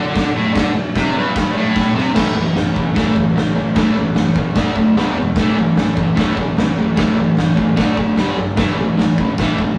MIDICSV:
0, 0, Header, 1, 4, 480
1, 0, Start_track
1, 0, Tempo, 401338
1, 664, Time_signature, 4, 2, 24, 8
1, 11700, End_track
2, 0, Start_track
2, 0, Title_t, "Distorted electric guitar"
2, 0, Program_c, 0, 30
2, 0, Note_on_c, 0, 50, 115
2, 411, Note_off_c, 0, 50, 0
2, 419, Note_on_c, 0, 45, 95
2, 638, Note_off_c, 0, 45, 0
2, 643, Note_on_c, 0, 50, 84
2, 881, Note_off_c, 0, 50, 0
2, 1145, Note_on_c, 0, 48, 103
2, 1376, Note_off_c, 0, 48, 0
2, 1389, Note_on_c, 0, 43, 105
2, 1857, Note_off_c, 0, 43, 0
2, 1868, Note_on_c, 0, 45, 97
2, 2328, Note_off_c, 0, 45, 0
2, 2333, Note_on_c, 0, 48, 90
2, 2550, Note_off_c, 0, 48, 0
2, 2554, Note_on_c, 0, 45, 81
2, 2567, Note_on_c, 0, 52, 77
2, 2574, Note_on_c, 0, 57, 87
2, 2792, Note_off_c, 0, 45, 0
2, 2799, Note_off_c, 0, 52, 0
2, 2802, Note_off_c, 0, 57, 0
2, 2817, Note_on_c, 0, 45, 64
2, 2820, Note_on_c, 0, 52, 80
2, 3026, Note_off_c, 0, 52, 0
2, 3029, Note_off_c, 0, 45, 0
2, 3041, Note_on_c, 0, 52, 85
2, 3044, Note_on_c, 0, 45, 75
2, 3259, Note_off_c, 0, 45, 0
2, 3266, Note_off_c, 0, 52, 0
2, 3273, Note_on_c, 0, 45, 71
2, 3280, Note_on_c, 0, 52, 80
2, 3502, Note_off_c, 0, 45, 0
2, 3506, Note_off_c, 0, 52, 0
2, 3523, Note_on_c, 0, 45, 97
2, 3532, Note_on_c, 0, 52, 112
2, 3542, Note_on_c, 0, 57, 120
2, 3756, Note_off_c, 0, 52, 0
2, 3757, Note_off_c, 0, 45, 0
2, 3766, Note_off_c, 0, 57, 0
2, 3770, Note_on_c, 0, 52, 78
2, 3776, Note_on_c, 0, 45, 68
2, 3991, Note_off_c, 0, 52, 0
2, 3993, Note_off_c, 0, 45, 0
2, 4016, Note_on_c, 0, 45, 71
2, 4018, Note_on_c, 0, 52, 81
2, 4233, Note_off_c, 0, 45, 0
2, 4235, Note_off_c, 0, 52, 0
2, 4256, Note_on_c, 0, 45, 62
2, 4258, Note_on_c, 0, 52, 73
2, 4474, Note_off_c, 0, 45, 0
2, 4475, Note_off_c, 0, 52, 0
2, 4496, Note_on_c, 0, 45, 82
2, 4503, Note_on_c, 0, 52, 80
2, 4518, Note_on_c, 0, 57, 75
2, 4723, Note_off_c, 0, 45, 0
2, 4727, Note_off_c, 0, 52, 0
2, 4735, Note_off_c, 0, 57, 0
2, 4741, Note_on_c, 0, 52, 74
2, 4748, Note_on_c, 0, 45, 71
2, 4956, Note_off_c, 0, 52, 0
2, 4960, Note_off_c, 0, 45, 0
2, 4976, Note_on_c, 0, 45, 74
2, 4989, Note_on_c, 0, 52, 84
2, 5194, Note_off_c, 0, 45, 0
2, 5201, Note_off_c, 0, 52, 0
2, 5221, Note_on_c, 0, 45, 65
2, 5230, Note_on_c, 0, 52, 81
2, 5437, Note_off_c, 0, 45, 0
2, 5441, Note_off_c, 0, 52, 0
2, 5443, Note_on_c, 0, 50, 94
2, 5454, Note_on_c, 0, 57, 108
2, 5466, Note_on_c, 0, 62, 114
2, 5677, Note_off_c, 0, 50, 0
2, 5683, Note_off_c, 0, 57, 0
2, 5689, Note_off_c, 0, 62, 0
2, 5707, Note_on_c, 0, 57, 71
2, 5709, Note_on_c, 0, 50, 74
2, 5920, Note_off_c, 0, 57, 0
2, 5921, Note_off_c, 0, 50, 0
2, 5945, Note_on_c, 0, 40, 91
2, 5946, Note_on_c, 0, 47, 97
2, 5962, Note_on_c, 0, 52, 91
2, 6168, Note_off_c, 0, 40, 0
2, 6169, Note_off_c, 0, 47, 0
2, 6177, Note_off_c, 0, 52, 0
2, 6194, Note_on_c, 0, 47, 73
2, 6203, Note_on_c, 0, 40, 74
2, 6404, Note_off_c, 0, 47, 0
2, 6408, Note_off_c, 0, 40, 0
2, 6436, Note_on_c, 0, 45, 88
2, 6437, Note_on_c, 0, 52, 79
2, 6454, Note_on_c, 0, 57, 87
2, 6650, Note_off_c, 0, 45, 0
2, 6655, Note_off_c, 0, 52, 0
2, 6663, Note_off_c, 0, 57, 0
2, 6664, Note_on_c, 0, 45, 68
2, 6677, Note_on_c, 0, 52, 77
2, 6879, Note_off_c, 0, 45, 0
2, 6885, Note_off_c, 0, 52, 0
2, 6911, Note_on_c, 0, 45, 80
2, 6911, Note_on_c, 0, 52, 77
2, 7122, Note_off_c, 0, 45, 0
2, 7123, Note_off_c, 0, 52, 0
2, 7144, Note_on_c, 0, 45, 75
2, 7151, Note_on_c, 0, 52, 79
2, 7347, Note_off_c, 0, 45, 0
2, 7361, Note_on_c, 0, 45, 88
2, 7362, Note_off_c, 0, 52, 0
2, 7380, Note_on_c, 0, 52, 95
2, 7389, Note_on_c, 0, 57, 97
2, 7597, Note_off_c, 0, 45, 0
2, 7606, Note_off_c, 0, 52, 0
2, 7611, Note_off_c, 0, 57, 0
2, 7625, Note_on_c, 0, 45, 65
2, 7634, Note_on_c, 0, 52, 76
2, 7839, Note_off_c, 0, 45, 0
2, 7844, Note_off_c, 0, 52, 0
2, 7868, Note_on_c, 0, 45, 74
2, 7879, Note_on_c, 0, 52, 79
2, 8081, Note_off_c, 0, 45, 0
2, 8087, Note_off_c, 0, 52, 0
2, 8106, Note_on_c, 0, 45, 61
2, 8106, Note_on_c, 0, 52, 73
2, 8301, Note_off_c, 0, 45, 0
2, 8315, Note_off_c, 0, 52, 0
2, 8315, Note_on_c, 0, 45, 83
2, 8329, Note_on_c, 0, 52, 92
2, 8333, Note_on_c, 0, 57, 97
2, 8555, Note_off_c, 0, 45, 0
2, 8562, Note_off_c, 0, 52, 0
2, 8563, Note_off_c, 0, 57, 0
2, 8569, Note_on_c, 0, 45, 76
2, 8574, Note_on_c, 0, 52, 72
2, 8792, Note_off_c, 0, 45, 0
2, 8794, Note_off_c, 0, 52, 0
2, 8838, Note_on_c, 0, 45, 70
2, 8843, Note_on_c, 0, 52, 83
2, 9037, Note_off_c, 0, 45, 0
2, 9044, Note_off_c, 0, 52, 0
2, 9051, Note_on_c, 0, 45, 77
2, 9059, Note_on_c, 0, 52, 84
2, 9273, Note_off_c, 0, 45, 0
2, 9277, Note_off_c, 0, 52, 0
2, 9279, Note_on_c, 0, 50, 94
2, 9288, Note_on_c, 0, 62, 105
2, 9290, Note_on_c, 0, 57, 89
2, 9517, Note_off_c, 0, 50, 0
2, 9521, Note_off_c, 0, 62, 0
2, 9522, Note_off_c, 0, 57, 0
2, 9533, Note_on_c, 0, 50, 70
2, 9550, Note_on_c, 0, 57, 80
2, 9754, Note_off_c, 0, 50, 0
2, 9763, Note_off_c, 0, 57, 0
2, 9779, Note_on_c, 0, 43, 94
2, 9788, Note_on_c, 0, 50, 96
2, 9799, Note_on_c, 0, 55, 100
2, 10007, Note_off_c, 0, 43, 0
2, 10011, Note_off_c, 0, 50, 0
2, 10017, Note_off_c, 0, 55, 0
2, 10019, Note_on_c, 0, 43, 75
2, 10026, Note_on_c, 0, 50, 72
2, 10238, Note_off_c, 0, 43, 0
2, 10240, Note_off_c, 0, 50, 0
2, 10245, Note_on_c, 0, 45, 79
2, 10248, Note_on_c, 0, 52, 84
2, 10248, Note_on_c, 0, 57, 84
2, 10480, Note_off_c, 0, 45, 0
2, 10482, Note_off_c, 0, 52, 0
2, 10482, Note_off_c, 0, 57, 0
2, 10500, Note_on_c, 0, 45, 69
2, 10506, Note_on_c, 0, 52, 86
2, 10718, Note_off_c, 0, 45, 0
2, 10721, Note_off_c, 0, 52, 0
2, 10732, Note_on_c, 0, 45, 74
2, 10748, Note_on_c, 0, 52, 71
2, 10955, Note_off_c, 0, 45, 0
2, 10962, Note_off_c, 0, 52, 0
2, 10994, Note_on_c, 0, 45, 67
2, 10998, Note_on_c, 0, 52, 82
2, 11206, Note_off_c, 0, 45, 0
2, 11207, Note_off_c, 0, 52, 0
2, 11228, Note_on_c, 0, 45, 98
2, 11235, Note_on_c, 0, 52, 108
2, 11252, Note_on_c, 0, 57, 116
2, 11452, Note_off_c, 0, 45, 0
2, 11456, Note_off_c, 0, 52, 0
2, 11464, Note_off_c, 0, 57, 0
2, 11476, Note_on_c, 0, 45, 68
2, 11490, Note_on_c, 0, 52, 72
2, 11687, Note_off_c, 0, 45, 0
2, 11694, Note_off_c, 0, 52, 0
2, 11700, End_track
3, 0, Start_track
3, 0, Title_t, "Muted distorted electric guitar strokes"
3, 886, Note_on_c, 9, 29, 58
3, 1006, Note_off_c, 9, 29, 0
3, 11700, End_track
4, 0, Start_track
4, 0, Title_t, "Drums"
4, 186, Note_on_c, 9, 36, 105
4, 186, Note_on_c, 9, 49, 52
4, 203, Note_on_c, 9, 38, 94
4, 306, Note_off_c, 9, 36, 0
4, 306, Note_off_c, 9, 49, 0
4, 323, Note_off_c, 9, 38, 0
4, 664, Note_on_c, 9, 36, 120
4, 671, Note_on_c, 9, 49, 68
4, 688, Note_on_c, 9, 38, 127
4, 783, Note_off_c, 9, 36, 0
4, 790, Note_off_c, 9, 49, 0
4, 807, Note_off_c, 9, 38, 0
4, 1138, Note_on_c, 9, 49, 61
4, 1143, Note_on_c, 9, 36, 96
4, 1155, Note_on_c, 9, 38, 104
4, 1258, Note_off_c, 9, 49, 0
4, 1262, Note_off_c, 9, 36, 0
4, 1275, Note_off_c, 9, 38, 0
4, 1625, Note_on_c, 9, 36, 127
4, 1626, Note_on_c, 9, 49, 69
4, 1643, Note_on_c, 9, 38, 108
4, 1745, Note_off_c, 9, 36, 0
4, 1746, Note_off_c, 9, 49, 0
4, 1763, Note_off_c, 9, 38, 0
4, 2104, Note_on_c, 9, 36, 109
4, 2128, Note_on_c, 9, 38, 59
4, 2223, Note_off_c, 9, 36, 0
4, 2247, Note_off_c, 9, 38, 0
4, 2369, Note_on_c, 9, 38, 65
4, 2488, Note_off_c, 9, 38, 0
4, 2584, Note_on_c, 9, 36, 115
4, 2584, Note_on_c, 9, 43, 89
4, 2584, Note_on_c, 9, 57, 110
4, 2601, Note_on_c, 9, 38, 116
4, 2704, Note_off_c, 9, 36, 0
4, 2704, Note_off_c, 9, 43, 0
4, 2704, Note_off_c, 9, 57, 0
4, 2721, Note_off_c, 9, 38, 0
4, 2825, Note_on_c, 9, 43, 52
4, 2945, Note_off_c, 9, 43, 0
4, 3054, Note_on_c, 9, 43, 80
4, 3071, Note_on_c, 9, 38, 94
4, 3174, Note_off_c, 9, 43, 0
4, 3191, Note_off_c, 9, 38, 0
4, 3303, Note_on_c, 9, 36, 86
4, 3315, Note_on_c, 9, 43, 68
4, 3423, Note_off_c, 9, 36, 0
4, 3435, Note_off_c, 9, 43, 0
4, 3543, Note_on_c, 9, 36, 125
4, 3549, Note_on_c, 9, 43, 89
4, 3566, Note_on_c, 9, 38, 108
4, 3663, Note_off_c, 9, 36, 0
4, 3669, Note_off_c, 9, 43, 0
4, 3686, Note_off_c, 9, 38, 0
4, 3779, Note_on_c, 9, 43, 63
4, 3781, Note_on_c, 9, 36, 73
4, 3899, Note_off_c, 9, 43, 0
4, 3901, Note_off_c, 9, 36, 0
4, 4025, Note_on_c, 9, 43, 73
4, 4042, Note_on_c, 9, 38, 110
4, 4145, Note_off_c, 9, 43, 0
4, 4161, Note_off_c, 9, 38, 0
4, 4257, Note_on_c, 9, 43, 54
4, 4376, Note_off_c, 9, 43, 0
4, 4488, Note_on_c, 9, 43, 88
4, 4497, Note_on_c, 9, 36, 117
4, 4504, Note_on_c, 9, 38, 122
4, 4607, Note_off_c, 9, 43, 0
4, 4617, Note_off_c, 9, 36, 0
4, 4624, Note_off_c, 9, 38, 0
4, 4732, Note_on_c, 9, 43, 62
4, 4852, Note_off_c, 9, 43, 0
4, 4962, Note_on_c, 9, 43, 80
4, 4978, Note_on_c, 9, 38, 93
4, 5081, Note_off_c, 9, 43, 0
4, 5098, Note_off_c, 9, 38, 0
4, 5201, Note_on_c, 9, 43, 63
4, 5211, Note_on_c, 9, 36, 91
4, 5320, Note_off_c, 9, 43, 0
4, 5331, Note_off_c, 9, 36, 0
4, 5445, Note_on_c, 9, 43, 80
4, 5451, Note_on_c, 9, 36, 115
4, 5462, Note_on_c, 9, 38, 113
4, 5565, Note_off_c, 9, 43, 0
4, 5570, Note_off_c, 9, 36, 0
4, 5581, Note_off_c, 9, 38, 0
4, 5686, Note_on_c, 9, 43, 53
4, 5689, Note_on_c, 9, 36, 73
4, 5805, Note_off_c, 9, 43, 0
4, 5809, Note_off_c, 9, 36, 0
4, 5932, Note_on_c, 9, 43, 78
4, 5949, Note_on_c, 9, 38, 98
4, 6052, Note_off_c, 9, 43, 0
4, 6069, Note_off_c, 9, 38, 0
4, 6171, Note_on_c, 9, 43, 47
4, 6291, Note_off_c, 9, 43, 0
4, 6404, Note_on_c, 9, 43, 88
4, 6410, Note_on_c, 9, 36, 110
4, 6420, Note_on_c, 9, 38, 115
4, 6523, Note_off_c, 9, 43, 0
4, 6529, Note_off_c, 9, 36, 0
4, 6540, Note_off_c, 9, 38, 0
4, 6647, Note_on_c, 9, 43, 55
4, 6767, Note_off_c, 9, 43, 0
4, 6890, Note_on_c, 9, 43, 77
4, 6907, Note_on_c, 9, 38, 96
4, 7010, Note_off_c, 9, 43, 0
4, 7026, Note_off_c, 9, 38, 0
4, 7140, Note_on_c, 9, 36, 88
4, 7146, Note_on_c, 9, 43, 60
4, 7259, Note_off_c, 9, 36, 0
4, 7266, Note_off_c, 9, 43, 0
4, 7383, Note_on_c, 9, 36, 115
4, 7388, Note_on_c, 9, 43, 92
4, 7405, Note_on_c, 9, 38, 114
4, 7502, Note_off_c, 9, 36, 0
4, 7508, Note_off_c, 9, 43, 0
4, 7525, Note_off_c, 9, 38, 0
4, 7621, Note_on_c, 9, 36, 76
4, 7632, Note_on_c, 9, 43, 56
4, 7740, Note_off_c, 9, 36, 0
4, 7751, Note_off_c, 9, 43, 0
4, 7859, Note_on_c, 9, 43, 86
4, 7876, Note_on_c, 9, 38, 101
4, 7979, Note_off_c, 9, 43, 0
4, 7996, Note_off_c, 9, 38, 0
4, 8102, Note_on_c, 9, 43, 53
4, 8222, Note_off_c, 9, 43, 0
4, 8341, Note_on_c, 9, 36, 123
4, 8342, Note_on_c, 9, 43, 98
4, 8359, Note_on_c, 9, 38, 120
4, 8460, Note_off_c, 9, 36, 0
4, 8461, Note_off_c, 9, 43, 0
4, 8478, Note_off_c, 9, 38, 0
4, 8580, Note_on_c, 9, 43, 68
4, 8699, Note_off_c, 9, 43, 0
4, 8817, Note_on_c, 9, 43, 86
4, 8833, Note_on_c, 9, 38, 100
4, 8936, Note_off_c, 9, 43, 0
4, 8953, Note_off_c, 9, 38, 0
4, 9055, Note_on_c, 9, 43, 64
4, 9057, Note_on_c, 9, 36, 82
4, 9175, Note_off_c, 9, 43, 0
4, 9176, Note_off_c, 9, 36, 0
4, 9296, Note_on_c, 9, 36, 112
4, 9296, Note_on_c, 9, 43, 82
4, 9312, Note_on_c, 9, 38, 111
4, 9415, Note_off_c, 9, 43, 0
4, 9416, Note_off_c, 9, 36, 0
4, 9432, Note_off_c, 9, 38, 0
4, 9530, Note_on_c, 9, 43, 55
4, 9535, Note_on_c, 9, 36, 77
4, 9650, Note_off_c, 9, 43, 0
4, 9655, Note_off_c, 9, 36, 0
4, 9761, Note_on_c, 9, 43, 75
4, 9778, Note_on_c, 9, 38, 97
4, 9881, Note_off_c, 9, 43, 0
4, 9897, Note_off_c, 9, 38, 0
4, 10004, Note_on_c, 9, 43, 53
4, 10124, Note_off_c, 9, 43, 0
4, 10248, Note_on_c, 9, 43, 82
4, 10254, Note_on_c, 9, 36, 120
4, 10265, Note_on_c, 9, 38, 118
4, 10368, Note_off_c, 9, 43, 0
4, 10374, Note_off_c, 9, 36, 0
4, 10384, Note_off_c, 9, 38, 0
4, 10496, Note_on_c, 9, 43, 62
4, 10615, Note_off_c, 9, 43, 0
4, 10740, Note_on_c, 9, 43, 75
4, 10756, Note_on_c, 9, 38, 100
4, 10859, Note_off_c, 9, 43, 0
4, 10876, Note_off_c, 9, 38, 0
4, 10979, Note_on_c, 9, 43, 59
4, 10980, Note_on_c, 9, 36, 87
4, 11099, Note_off_c, 9, 43, 0
4, 11100, Note_off_c, 9, 36, 0
4, 11221, Note_on_c, 9, 36, 118
4, 11222, Note_on_c, 9, 43, 91
4, 11239, Note_on_c, 9, 38, 110
4, 11340, Note_off_c, 9, 36, 0
4, 11342, Note_off_c, 9, 43, 0
4, 11359, Note_off_c, 9, 38, 0
4, 11462, Note_on_c, 9, 36, 67
4, 11464, Note_on_c, 9, 43, 52
4, 11582, Note_off_c, 9, 36, 0
4, 11584, Note_off_c, 9, 43, 0
4, 11700, End_track
0, 0, End_of_file